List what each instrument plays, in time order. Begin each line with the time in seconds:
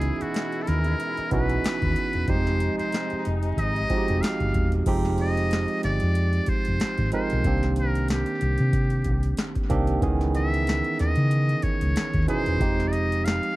Already playing: horn section B2 G#3 E4, tine electric piano E3 B3 C#4 D#4 G#4, muted trumpet G#4
0.02 closed hi-hat
0.21 muted trumpet F#4, muted fingered electric bass stroke, closed hi-hat
0.34 snare, closed hi-hat
0.52 closed hi-hat
0.62 muted trumpet A4
0.67 fingered electric bass D#2, muted trumpet A#4, snare, closed hi-hat
0.84 closed hi-hat
1.00 closed hi-hat
1.17 muted fingered electric bass stroke, closed hi-hat
1.31 fingered electric bass B1, tine electric piano E3 B3 C#4 D#4 F#4, muted trumpet B4, kick, closed hi-hat
1.49 closed hi-hat
1.64 muted fingered electric bass stroke, snare, closed hi-hat
1.82 fingered electric bass D#2, kick, closed hi-hat
1.96 closed hi-hat
2.13 fingered electric bass E1, closed hi-hat
2.28 fingered electric bass F1, horn section C3 G#3 D#4, tine electric piano F3 G3 C4 D#4 G4, muted trumpet C5, kick, closed hi-hat
2.35 tine electric piano G#3
2.47 snare, closed hi-hat
2.60 closed hi-hat
2.78 muted trumpet C5, muted fingered electric bass stroke, closed hi-hat
2.92 snare, closed hi-hat
3.10 muted fingered electric bass stroke, closed hi-hat
3.25 fingered electric bass F1, closed hi-hat
3.43 closed hi-hat
3.57 fingered electric bass G#1, muted trumpet D#5, kick, closed hi-hat
3.76 closed hi-hat
3.90 tine electric piano F3 G#3 C4 D#4 F#4, kick, closed hi-hat
3.98 tine electric piano G4
4.08 fingered electric bass F1, closed hi-hat
4.21 muted trumpet F5, snare, closed hi-hat
4.40 fingered electric bass G1, kick, closed hi-hat
4.54 fingered electric bass E1, kick, closed hi-hat
4.72 closed hi-hat
4.86 fingered electric bass F1, tine electric piano F3 G#3 C4 D#4 G4, kick, closed hi-hat, crash
5.05 snare, closed hi-hat
5.18 muted trumpet D#5, closed hi-hat
5.37 closed hi-hat
5.51 snare, closed hi-hat
5.68 closed hi-hat
5.83 fingered electric bass G1, muted trumpet D5, snare, closed hi-hat
6.00 fingered electric bass F2, closed hi-hat
6.15 closed hi-hat
6.33 closed hi-hat
6.46 muted trumpet C5, muted fingered electric bass stroke, kick, closed hi-hat
6.65 fingered electric bass F1, closed hi-hat
6.80 snare, closed hi-hat
6.98 fingered electric bass G#1, kick, closed hi-hat
7.12 tine electric piano F3 G#3 C4 D#4 A#4, muted trumpet C5, closed hi-hat
7.30 fingered electric bass B1, closed hi-hat
7.44 fingered electric bass C2, tine electric piano D#3 A#3 C4 D4 G4, kick, closed hi-hat
7.63 snare, closed hi-hat
7.76 muted trumpet A#4, closed hi-hat
7.95 closed hi-hat
8.08 muted trumpet G4, snare, closed hi-hat
8.26 closed hi-hat
8.41 fingered electric bass C2, closed hi-hat
8.58 fingered electric bass C3, closed hi-hat
8.73 kick, closed hi-hat
8.90 closed hi-hat
9.04 fingered electric bass C2, kick, closed hi-hat
9.23 closed hi-hat
9.37 snare, closed hi-hat
9.55 kick, closed hi-hat
9.69 fingered electric bass C2, tine electric piano D#3 A#3 C4 D4 G4, kick, closed hi-hat
9.87 closed hi-hat
10.01 fingered electric bass C#2, tine electric piano D#3 E3 B3 C#4 G#4, kick, closed hi-hat
10.21 snare, closed hi-hat
10.35 muted trumpet E5, closed hi-hat
10.54 closed hi-hat
10.67 snare, closed hi-hat
10.84 closed hi-hat
10.99 fingered electric bass D#2, muted trumpet D#5, snare, closed hi-hat
11.16 fingered electric bass C#3, closed hi-hat
11.31 closed hi-hat
11.49 closed hi-hat
11.62 muted trumpet C#5, muted fingered electric bass stroke, kick, closed hi-hat
11.81 fingered electric bass C#2, closed hi-hat
11.96 snare, closed hi-hat
12.14 fingered electric bass D#2, kick, closed hi-hat
12.27 tine electric piano B2 E3 C#4 D#4 G#4, muted trumpet C5, closed hi-hat
12.46 fingered electric bass E1, closed hi-hat
12.60 fingered electric bass F1, tine electric piano F3 G#3 C4 D#4 G4, kick, closed hi-hat
12.80 snare, closed hi-hat
12.88 muted trumpet D5
12.92 muted trumpet D#5, closed hi-hat
13.12 closed hi-hat
13.25 muted trumpet F5, snare, closed hi-hat
13.43 closed hi-hat